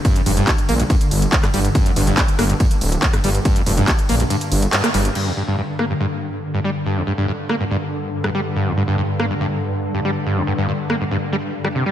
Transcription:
<<
  \new Staff \with { instrumentName = "Synth drone" } { \clef bass \time 4/4 \key g \minor \tempo 4 = 141 <g, d>1~ | <g, d>1~ | <g, d>1 | <g, d>1~ |
<g, d>1~ | <g, d>1~ | <g, d>1 | }
  \new Staff \with { instrumentName = "Acid bass" } { \clef bass \time 4/4 \key g \minor g,16 f,16 g,16 g,16 r8 bes16 g,16 g,16 r4 g,16 g16 r16 | g,16 f,16 g,16 g,16 r8 bes16 g,16 g,16 r4 g,16 g16 r16 | g,16 f,16 g,16 g,16 r8 bes16 g,16 g,16 r8. g,16 bes16 g16 r16 | g,16 f,16 g,16 g,16 g,16 r16 bes16 g,16 g,16 r4 g,16 g16 r16 |
g,16 f,16 g,16 g,16 g,16 r16 bes16 g,16 g,16 r4 g,16 g16 r16 | g,16 f,16 g,16 g,16 g,16 r16 bes16 g,16 g,16 r4 g,16 g16 r16 | g,16 f,16 g,16 g,16 g,16 r16 bes16 g,16 g,16 r16 g16 r8 g16 c16 g16 | }
  \new Staff \with { instrumentName = "Detuned saw bass" } { \clef bass \time 4/4 \key g \minor r8 f,,8 r8 bes,,8 r8 g,,8 r8 g,,8 | r8 g,,8 r8 g,,8 r8 d,,8 r8 g,,8 | r8 f,,8 r8 bes,,8 r8 g,,8 r8 g,,8 | r1 |
r1 | r1 | r1 | }
  \new DrumStaff \with { instrumentName = "Drums" } \drummode { \time 4/4 <hh bd cymr>16 <hh cymr>16 <hho cymr>16 <hh cymr>16 <hc hh bd cymr>16 <hh cymr>16 <hho cymr>16 <hh cymr>16 <hh bd cymr>16 <hh cymr>16 <hho cymr>16 <hh cymr>16 <hc hh bd cymr>16 <hc hh cymr ss>16 <hho cymr>16 <hh cymr>16 | <hh bd cymr>16 <hh cymr>16 <hho cymr>16 <hh cymr>16 <hc hh bd cymr>16 <hh cymr>16 <hho cymr ss>16 <hh cymr>16 <hh bd cymr>16 <hh cymr>16 <hho cymr>16 <hh cymr>16 <hc hh bd cymr>16 <hh cymr ss>16 <hho cymr>16 <hh cymr>16 | <hh bd cymr>16 <hh cymr>16 <hho cymr>16 <hh cymr>16 <hc hh bd cymr>16 <hh cymr>16 <hho cymr>16 <hh cymr>16 <hh cymr>16 <hh cymr>16 <hho cymr>16 <hh cymr>16 <hc hh cymr>16 <hc hh cymr ss>16 <hho cymr>16 <hh cymr>16 | cymc4 r8 ss8 r4 r4 |
r4 r8 ss8 r4 r16 ss8. | r4 r8 ss8 r4 r4 | r4 r8 ss8 r4 r16 ss8. | }
>>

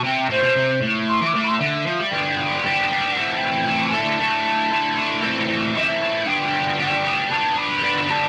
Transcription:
<<
  \new Staff \with { instrumentName = "Flute" } { \time 4/4 \key a \minor \tempo 4 = 115 g''8 c''4 r8 \tuplet 3/2 { c'''8 d'''8 c'''8 } e''4 | g''4 g''4 fis''8 g''4 a''8~ | a''2~ a''8 r8 e''4 | g''4 g''4 a''8 b''4 a''8 | }
  \new Staff \with { instrumentName = "Overdriven electric guitar" } { \time 4/4 \key a \minor c8 a,16 b,16 c8 a,8. e16 a,8 d8 f16 g16 | <g, d g b d' g'>4 <g b d' g'>8 <g b d' g'>8 <a, e c' e' a'>4 <a, e c' e' a'>8 <d a e' a'>8 | <d a e' a'>4 <d a e' a'>8 <a e' a'>8 <a, e c' e' a'>4 <a, e c' e' a'>8 <c' e' a'>8 | <g, d g b d' g'>4 <g b d' g'>8 <g b d' g'>8 <g b d' g'>4 <g, d g b d' g'>8 <g b d' g'>8 | }
>>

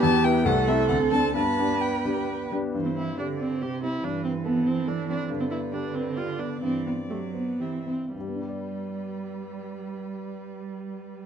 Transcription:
<<
  \new Staff \with { instrumentName = "Violin" } { \time 3/4 \key g \major \tempo 4 = 130 a''8 g''8 fis''8 e''8 fis''8 a''8 | a''4 g''4. r8 | c''4 d''4 c''4 | b'4 a'2 |
b'2 d''4~ | d''2 e''8 r8 | b'2.~ | b'2. | }
  \new Staff \with { instrumentName = "Grand piano" } { \time 3/4 \key g \major e,8 <b e' b'>8 c,8 <c' e' a'>8 d,8 <c' d' a'>8 | g,8 <b d' g'>4 <b d' g'>4 <b d' g'>8 | g,8 c'8 g'8 c''8 g'8 c'8 | g,8 c'8 a'8 c''8 a'8 c'8 |
g,8 b8 g'8 b'8 g'8 b8 | g,8 c'8 g'8 c''8 g'8 c'8 | <g, g b d' g' d''>2.~ | <g, g b d' g' d''>2. | }
  \new Staff \with { instrumentName = "Viola" } { \time 3/4 \key g \major b4 a4 c'4 | b2~ b8 r8 | r16 c'16 e'8 d'8 c'8 g'8 e'8 | d'8 c'8 b8 c'8 d'8 d'8 |
r16 c'16 e'8 d'8 c'8 f'8 d'8 | c'8 b8 a8 b8 c'8 c'8 | g2.~ | g2. | }
  \new Staff \with { instrumentName = "Cello" } { \clef bass \time 3/4 \key g \major g'4 a'2 | b'2~ b'8 r8 | e4 d4 c4 | e2. |
d2. | e4 fis4 e8 r8 | g2.~ | g2. | }
>>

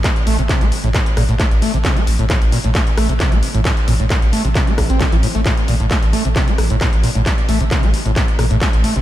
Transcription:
<<
  \new Staff \with { instrumentName = "Acid bass" } { \clef bass \time 4/4 \key a \phrygian \tempo 4 = 133 a16 r16 a16 c16 c16 a16 r16 a,16 a,16 r16 bes,16 a,16 a16 r16 a16 c16 | c16 a16 r16 a,16 a,16 r16 bes,16 a,16 a16 r16 a16 c16 c16 a16 r16 a,16 | a,16 r16 bes,16 a,16 a16 r16 a16 c16 c16 a16 r16 c'16 a,16 e16 a,16 a16 | a,16 r16 bes,16 a,16 a16 r16 a16 c16 c16 a16 r16 a,16 a,16 r16 bes,16 a,16 |
a16 r16 a16 c16 c16 a16 r16 a,16 a,16 r16 bes,16 a,16 a16 r16 a16 c16 | }
  \new Staff \with { instrumentName = "Sub bass" } { \clef bass \time 4/4 \key a \phrygian r8 a,,16 a,,16 r16 a,,16 r16 a,,16 r8 a,,16 a,,16 r16 a,,16 r16 a,,16 | r8 a,,16 a,,16 r16 a,,16 r16 a,,16 r8 a,,16 a,,16 r16 a,,16 r16 a,,16 | r8 a,,16 a,,16 r16 a,,16 r16 a,,16 r8 a,,16 a,,16 r16 a,,16 r16 a,,16 | r8 a,,16 a,,16 r16 a,,16 r16 a,,16 r8 a,,16 a,,16 r16 a,,16 r16 a,,16 |
r8 a,,16 a,,16 r16 a,,16 r16 a,,16 r8 a,,16 a,,16 r16 a,,16 r16 a,,16 | }
  \new DrumStaff \with { instrumentName = "Drums" } \drummode { \time 4/4 <hc hh bd>16 hh16 hho16 hh16 <hc hh bd>16 hh16 hho16 hh16 <hc hh bd>16 hh16 <hho ss>16 hh16 <hc hh bd>16 hh16 hho16 hh16 | <hc hh bd>16 hh16 hho16 hh16 <hc hh bd>16 hh16 hho16 hh16 <hc hh bd>16 hh16 <hho ss>16 hh16 <hc hh bd>16 hh16 hho16 hh16 | <hc hh bd>16 hh16 hho16 hh16 <hc hh bd>16 hh16 hho16 hh16 <hc hh bd>16 hh16 <hho bd ss>16 hh16 <hc hh bd>16 hh16 hho16 hh16 | <hc hh bd>16 hh16 hho16 hh16 <hc hh bd>16 hh16 hho16 hh16 <hc hh bd>16 hh16 <hho ss>16 hh16 <hc hh bd>16 hh16 hho16 hh16 |
<hc hh bd>16 hh16 hho16 hh16 <hc hh bd>16 hh16 hho16 hh16 <hc hh bd>16 hh16 <hho ss>16 hh16 <hc hh bd>16 hh16 hho16 hh16 | }
>>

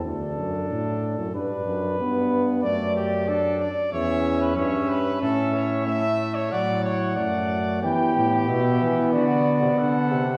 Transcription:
<<
  \new Staff \with { instrumentName = "Cornet" } { \time 4/4 \key d \mixolydian \tempo 4 = 92 a'2 b'2 | d''4. r8 e''4 e''4 | e''2 fis''2 | \key e \minor g''4 e''4 d''4 fis''4 | }
  \new Staff \with { instrumentName = "Trumpet" } { \time 4/4 \key d \mixolydian r1 | d''8 g'8 a'8 d''8 cis''8. b'16 cis''8 b'8 | a'8 cis''8 e''8. cis''16 d''8 cis''8 d''4 | \key e \minor g'2 fis'4 a'4 | }
  \new Staff \with { instrumentName = "Trombone" } { \time 4/4 \key d \mixolydian d'2 d'4 b4 | a4 d'8 r8 cis'2 | cis'4 a4 fis4 a4 | \key e \minor b1 | }
  \new Staff \with { instrumentName = "Bass trombone" } { \clef bass \time 4/4 \key d \mixolydian d,8 fis,8 a,8. fis,16 g,8 fis,8 g,4 | fis,4. r8 e,4 g,4 | a,2 a,4 fis,4 | \key e \minor e8 a,8 b,8 e8 d8. c16 d8 c8 | }
>>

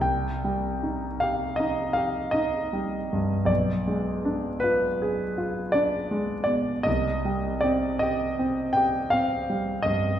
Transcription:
\new Staff \with { instrumentName = "Grand piano" } { \time 9/8 \key c \minor \tempo 4. = 53 << { g''4. f''8 ees''8 f''8 ees''4. | d''4. b'4. d''4 d''8 | ees''4 d''8 ees''4 g''8 f''4 ees''8 | } \\ { c,8 g8 ees'8 g'8 ees'8 g'8 ees'8 g8 g,8 | b,,8 gis8 d'8 f'8 gis'8 f'8 d'8 gis8 b,8 | c,8 g8 c'8 g'8 c'8 g'8 c'8 g8 g,8 | } >> }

